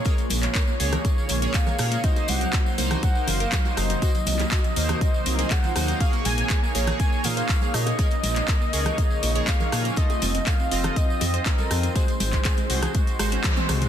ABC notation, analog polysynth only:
X:1
M:4/4
L:1/16
Q:1/4=121
K:Bbm
V:1 name="Analog polysynth"
[B,Ad] z4 z [B,Ad]4- [B,Ad] [B,Ad]3 [B,Ad]2 | [B,Ec]6 [B,Ec]8- [B,Ec]2 | [B,Ec] z4 z [B,Ec]4- [B,Ec] [B,Ec]3 [B,Ec]2 | [B,Ad]6 [B,Ad]8- [B,Ad]2 |
[B,Ad] z4 z [B,Ad]4- [B,Ad] [B,Ad]3 [B,Ad]2 | [=A,Fe]6 [CFe]8- [CFe]2 | [A,Gc] z4 z [A,Gc]4 [A,Gc]6 |]